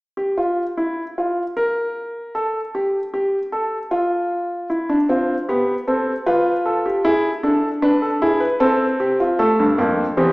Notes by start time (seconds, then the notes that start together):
0.17 G4
0.38 F4
0.77 E4
1.18 F4
1.57 A#4
2.35 A4
2.75 G4
3.14 G4
3.52 A4
3.91 F4
4.70 E4
4.89 D4
5.09 C4 F4
5.49 B3 G4
5.87 C4 A4
6.26 F4 B4
6.66 A4
6.86 G4
7.05 E4 G#4
7.43 D4 A4
7.82 D4 B4
8.02 A4
8.22 E4 G#4
8.40 B4
8.60 C4 A4
9.00 G4
9.20 F4
9.39 A3 A4
9.59 G2
9.78 F2 A#3
10.17 E2 C4 G4